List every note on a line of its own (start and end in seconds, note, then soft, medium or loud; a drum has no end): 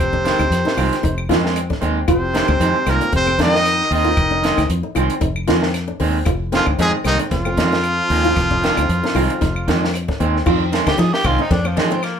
0.00 0.32 F1 medium
0.00 1.25 C3 medium
0.00 1.27 C4 medium
0.00 1.26 C5 medium
0.13 0.32 D4 medium
0.13 kick medium
0.25 0.41 D#3 medium
0.25 0.42 G#3 medium
0.25 0.42 C4 medium
0.25 snare medium
0.25 closed hi-hat medium
0.39 0.49 D2 medium
0.39 0.58 D#4 medium
0.39 closed hi-hat soft
0.39 claves medium
0.50 0.62 F2 loud
0.50 snare soft
0.50 closed hi-hat medium
0.65 0.74 D#4 medium
0.65 snare medium
0.77 0.89 C2 medium
0.77 0.94 D#3 medium
0.77 0.94 G#3 medium
0.77 0.94 C4 medium
0.77 0.96 F4 medium
0.77 open hi-hat medium
0.77 claves medium
0.93 snare soft
0.93 closed hi-hat medium
1.03 1.31 F1 medium
1.03 1.22 D#4 medium
1.03 kick medium
1.03 closed hi-hat medium
1.18 claves medium
1.29 1.72 F2 loud
1.29 1.44 D#3 medium
1.29 1.44 G#3 medium
1.29 1.43 C4 medium
1.29 1.48 F4 medium
1.29 snare medium
1.29 closed hi-hat medium
1.44 1.59 G#3 medium
1.44 1.59 C4 medium
1.44 snare medium
1.56 closed hi-hat medium
1.56 claves medium
1.70 1.78 D4 medium
1.70 kick medium
1.70 snare soft
1.81 2.03 D#2 medium
1.81 1.98 D#3 medium
1.81 1.98 G#3 medium
1.81 2.00 C4 medium
1.81 1.99 C4 medium
1.81 closed hi-hat medium
2.08 2.41 F1 medium
2.08 2.89 C3 medium
2.08 2.91 C4 medium
2.08 2.26 F4 medium
2.08 2.91 C5 medium
2.08 kick loud
2.08 closed hi-hat medium
2.08 claves medium
2.34 2.51 D#3 medium
2.34 2.51 G#3 medium
2.34 2.51 C4 medium
2.34 2.44 D#4 medium
2.34 snare medium
2.34 closed hi-hat medium
2.48 2.58 D2 loud
2.48 muted nylon-string guitar stroke medium
2.48 kick medium
2.48 claves medium
2.60 2.72 F2 loud
2.60 2.77 D#3 medium
2.60 2.77 G#3 medium
2.60 2.77 C4 medium
2.60 2.79 D#4 medium
2.60 closed hi-hat medium
2.86 2.98 C2 medium
2.86 3.13 A#2 medium
2.86 3.03 D#3 medium
2.86 3.03 G#3 medium
2.86 3.14 A#3 medium
2.86 2.97 C4 medium
2.86 3.04 C4 medium
2.86 3.14 A#4 medium
2.86 snare soft
2.86 closed hi-hat medium
2.86 claves medium
3.01 3.09 D4 medium
3.01 closed hi-hat medium
3.12 3.40 F1 loud
3.12 3.38 C3 medium
3.12 3.23 C4 medium
3.12 3.39 C4 medium
3.12 3.39 C5 loud
3.12 kick medium
3.12 closed hi-hat medium
3.27 3.35 C4 medium
3.27 claves medium
3.39 3.81 F2 medium
3.39 3.55 D#3 medium
3.39 3.88 D#3 medium
3.39 3.56 G#3 medium
3.39 3.56 C4 medium
3.39 3.49 D4 medium
3.39 3.89 D#4 loud
3.39 snare medium
3.39 closed hi-hat soft
3.43 3.90 D#5 loud
3.53 3.71 C4 medium
3.53 snare medium
3.65 snare soft
3.65 closed hi-hat medium
3.65 claves medium
3.81 snare soft
3.91 4.12 D#2 loud
3.91 4.08 D#3 medium
3.91 4.66 D#3 medium
3.91 4.08 C4 medium
3.91 4.67 D#4 medium
3.91 4.67 D#5 medium
3.91 muted clean electric guitar stroke medium
3.91 open hi-hat medium
4.05 4.23 F4 medium
4.17 4.50 F1 medium
4.17 kick medium
4.17 closed hi-hat medium
4.17 claves medium
4.31 4.50 D4 medium
4.43 4.60 D#3 medium
4.43 4.60 G#3 medium
4.43 4.61 C4 medium
4.43 snare medium
4.43 closed hi-hat medium
4.57 4.68 D2 medium
4.57 4.76 D#4 medium
4.57 kick medium
4.57 snare soft
4.57 closed hi-hat medium
4.57 claves medium
4.69 4.81 F2 loud
4.69 closed hi-hat medium
4.83 4.92 D#4 medium
4.95 5.08 C2 medium
4.95 5.13 D#3 medium
4.95 5.13 G#3 medium
4.95 5.13 C4 medium
4.95 5.14 F4 medium
4.95 closed hi-hat medium
4.95 claves medium
5.10 closed hi-hat medium
5.21 5.50 F1 loud
5.21 5.40 D#4 medium
5.21 kick medium
5.21 closed hi-hat medium
5.36 claves medium
5.48 5.91 F2 medium
5.48 5.65 D#3 medium
5.48 5.65 G#3 medium
5.48 5.65 C4 medium
5.48 5.66 F4 medium
5.48 snare medium
5.48 closed hi-hat medium
5.63 snare medium
5.74 snare soft
5.74 closed hi-hat medium
5.74 claves medium
5.88 5.96 D4 medium
6.00 6.22 D#2 medium
6.00 6.17 D#3 medium
6.00 6.17 G#3 medium
6.00 6.19 C4 medium
6.00 6.18 C4 medium
6.00 open hi-hat medium
6.25 6.60 F1 loud
6.25 6.45 F4 medium
6.25 kick medium
6.25 closed hi-hat medium
6.25 claves medium
6.52 6.66 F2 medium
6.52 6.70 D#3 medium
6.52 6.70 G#3 medium
6.52 6.63 C4 medium
6.52 6.70 C4 medium
6.52 6.66 F4 loud
6.52 snare medium
6.52 closed hi-hat medium
6.57 6.67 F3 medium
6.66 6.77 D2 medium
6.66 6.75 D4 medium
6.66 kick medium
6.66 claves medium
6.79 6.91 F2 loud
6.79 6.92 G#2 medium
6.79 6.96 D#3 medium
6.79 6.96 G#3 medium
6.79 6.93 G#3 medium
6.79 6.96 C4 medium
6.79 6.97 D#4 medium
6.79 6.93 G#4 loud
6.79 closed hi-hat medium
7.04 7.17 C2 medium
7.04 7.18 D#2 medium
7.04 7.22 D#3 medium
7.04 7.23 G#3 medium
7.04 7.15 C4 medium
7.04 7.23 C4 medium
7.04 7.18 D#4 loud
7.04 snare soft
7.04 closed hi-hat medium
7.04 claves medium
7.09 7.20 D#3 medium
7.19 7.28 D4 medium
7.19 closed hi-hat medium
7.31 7.59 F1 loud
7.31 9.90 F2 medium
7.31 9.91 F3 medium
7.31 7.42 C4 medium
7.31 9.90 F4 loud
7.31 kick medium
7.31 snare soft
7.31 closed hi-hat medium
7.45 7.54 C4 medium
7.45 claves medium
7.57 8.00 F2 loud
7.57 7.74 D#3 medium
7.57 7.75 G#3 medium
7.57 7.75 C4 medium
7.57 7.68 D4 medium
7.57 snare medium
7.57 closed hi-hat medium
7.72 7.91 C4 medium
7.72 snare medium
7.83 closed hi-hat medium
7.83 claves medium
8.10 8.31 D#2 loud
8.10 8.27 D#3 medium
8.10 8.27 G#3 medium
8.10 8.28 C4 medium
8.10 open hi-hat medium
8.25 8.43 F4 medium
8.36 8.70 F1 medium
8.36 kick loud
8.36 snare soft
8.36 closed hi-hat medium
8.36 claves medium
8.51 8.69 D4 medium
8.51 kick medium
8.63 8.79 D#3 medium
8.63 8.80 G#3 medium
8.63 8.80 C4 medium
8.63 snare medium
8.63 closed hi-hat medium
8.77 8.87 D2 medium
8.77 8.96 D#4 medium
8.77 closed hi-hat medium
8.77 claves medium
8.89 9.01 F2 loud
8.89 closed hi-hat medium
9.04 9.12 D#4 medium
9.04 snare medium
9.15 9.27 C2 medium
9.15 9.32 D#3 medium
9.15 9.32 G#3 medium
9.15 9.32 C4 medium
9.15 9.33 F4 medium
9.15 open hi-hat medium
9.15 claves medium
9.30 closed hi-hat medium
9.41 9.69 F1 medium
9.41 9.60 D#4 medium
9.41 kick medium
9.41 snare soft
9.41 closed hi-hat medium
9.56 claves medium
9.68 10.10 F2 loud
9.68 9.84 D#3 medium
9.68 9.84 G#3 medium
9.68 9.85 C4 medium
9.68 9.86 F4 medium
9.68 snare medium
9.68 closed hi-hat medium
9.85 snare medium
9.94 closed hi-hat medium
9.94 claves medium
10.08 10.17 D4 medium
10.08 kick medium
10.08 snare soft
10.20 10.41 D#2 loud
10.20 10.37 D#3 medium
10.20 10.37 G#3 medium
10.20 10.39 C4 medium
10.20 10.37 C4 medium
10.20 closed hi-hat medium
10.36 snare soft
10.46 10.79 F2 medium
10.46 10.63 D#3 medium
10.46 10.63 C4 medium
10.46 10.65 F4 medium
10.46 muted clean electric guitar stroke medium
10.46 kick medium
10.46 crash medium
10.46 claves medium
10.72 10.89 D#3 medium
10.72 10.89 G#3 medium
10.72 10.89 C4 medium
10.72 10.82 D#4 medium
10.72 snare medium
10.72 ride bell medium
10.87 10.96 D3 medium
10.87 10.95 D4 medium
10.87 11.01 G4 medium
10.87 kick medium
10.87 snare medium
10.87 ride bell medium
10.87 claves medium
10.98 11.10 F3 loud
10.98 11.17 D#4 loud
10.98 11.15 G#4 medium
10.98 snare soft
10.98 ride bell medium
11.13 11.28 G4 loud
11.13 snare medium
11.24 11.36 C2 loud
11.24 11.42 D#3 medium
11.24 11.42 G#3 medium
11.24 11.34 C4 medium
11.24 11.42 C4 medium
11.24 11.43 F4 loud
11.24 kick medium
11.24 ride bell medium
11.24 claves medium
11.39 11.47 D4 medium
11.39 11.53 D#4 medium
11.51 11.79 F2 loud
11.51 11.61 C4 loud
11.51 11.69 D4 medium
11.51 kick medium
11.51 snare soft
11.51 ride bell medium
11.65 11.79 F3 medium
11.65 11.73 C4 medium
11.65 claves medium
11.77 11.93 D#3 medium
11.77 12.20 F3 loud
11.77 11.94 G#3 medium
11.77 11.94 C4 medium
11.77 11.87 D4 medium
11.77 snare medium
11.77 ride bell medium
11.91 12.09 C4 medium
11.91 12.05 C4 medium
11.91 ride bell medium
12.03 12.20 A#3 medium
12.03 snare soft
12.03 ride bell soft
12.03 claves medium